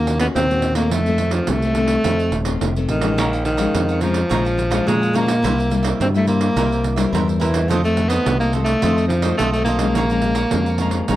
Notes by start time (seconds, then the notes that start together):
Already playing: D#2 D#3 A#3 C#4 F#4
0.07 pandeiro
0.19 A#3 B3 C#4 F#4, pandeiro
0.35 D#2 A#2 C4, pandeiro
0.50 A#3 C#4 F#4, pandeiro
0.62 pandeiro
0.75 D#3 A3 A#3 C4, pandeiro
0.91 F2 A3, pandeiro
1.06 D#3 A3 C4, pandeiro
1.18 D#3 A3 C4, pandeiro
1.31 F3, pandeiro
1.47 C2 C3 A3, pandeiro
1.62 D#3 A3 C4, pandeiro
1.75 D#3 A3 C4, pandeiro
1.88 pandeiro
2.04 F2 D#3 A3 C4, pandeiro
2.19 pandeiro
2.31 D#1, pandeiro
2.45 D#3 A3 C4, pandeiro
2.61 F1 C3, pandeiro
2.76 D#3 A3 C4, pandeiro
2.88 A1 D#3, pandeiro
3.01 F3 G#3 C#4, pandeiro
3.17 A#1 A#2 G#4 C#5 F5 A#5, pandeiro
3.33 C#5 F5 A#5, pandeiro
3.45 D#3, muted cavaquinho stroke, pandeiro
3.57 F3 G#3 C#4 C#5 F5 A#5, pandeiro
3.74 F2, pandeiro
3.88 C#5 F5 A#5, pandeiro
4.01 F3 G#3 C#4 G#4 C#5 F5 A#5, pandeiro
4.14 pandeiro
4.29 A#1 A#2 F3 G#3 C#4 G#4 C#5 F5 A#5, pandeiro
4.45 C#5 F5 A#5, pandeiro
4.58 muted cavaquinho stroke, pandeiro
4.71 F3 G#3 C#4 C#5 F5 A#5, pandeiro
4.87 F2 A#2 G#3 G#4 C#5 F5 A#5, pandeiro
5.02 C#5 F5 A#5, pandeiro
5.13 F3 G#3 A#3 C#4 G#4 C#5 F5 A#5, pandeiro
5.26 C#5 F5 A#5, pandeiro
5.43 C2 C3 G3 A#3 E4 A#4 C5 E5, pandeiro
5.58 A#4 C5 E5, pandeiro
5.70 G3 A#3 E4, muted cavaquinho stroke, pandeiro
5.83 A#4 C5 E5, pandeiro
6.00 G2 C4, pandeiro
6.14 G3 A3 A#3 E4 A#4 C5 E5, pandeiro
6.27 A#3 E4 A#4 C5 E5, pandeiro
6.41 pandeiro
6.56 C2 C3 G3 A#3 E4 A#4 C5 E5, pandeiro
6.71 A#4 C5 E5, pandeiro
6.84 muted cavaquinho stroke, pandeiro
6.96 G3 A#3 E4 A#4 C5 E5, pandeiro
7.13 E2 G2 E4 A#4 C5 E5, pandeiro
7.28 A#4 C5 E5, pandeiro
7.40 E3 G3 A#3 E4 A#4 C5 E5, pandeiro
7.53 A#4 C5 E5, pandeiro
7.68 F2 D#3 F3 A3 C4 F4 A4 C5 D#5, pandeiro
7.84 D#3 A3 C4 A4 C5 D#5, pandeiro
7.96 D#3 A3 C4, muted cavaquinho stroke, pandeiro
8.09 B3 A4 C5 D#5, pandeiro
8.26 C2 C3, pandeiro
8.40 A#3 A4 C5 D#5, pandeiro
8.53 D#3 A3 C4 F4 A4 C5 D#5, pandeiro
8.64 A3, pandeiro
8.82 F2 D#3 A3 C4 F4 A4 C5 D#5, pandeiro
8.97 A4 C5 D#5, pandeiro
9.07 F3, muted cavaquinho stroke, pandeiro
9.22 D#3 A3 C4 A4 C5 D#5, pandeiro
9.37 B1 A3 F4 A4 C5 D#5, pandeiro
9.52 D#3 A3 C5 D#5, pandeiro
9.56 A3 C4 A4
9.64 A#3 F4 A4 C5 D#5, pandeiro
9.79 F3 G#3 C#4 A4 C5 D#5, pandeiro
9.95 A#1 A#2 G#4 C#5 F5 A#5, pandeiro
10.10 F3 G#3 C#4 C#5 F5 A#5, pandeiro
10.22 F3 G#3 C#4, muted cavaquinho stroke, pandeiro
10.35 C#5 F5 A#5, pandeiro
10.51 F2 F3 G#3 C#4, pandeiro
10.66 C#5 F5 A#5, pandeiro
10.78 F3 G#3 C#4 G#4 C#5 F5 A#5, pandeiro
10.91 pandeiro
11.08 A#1 A#2 F3 G#3 C#4 G#4 C#5 F5 A#5, pandeiro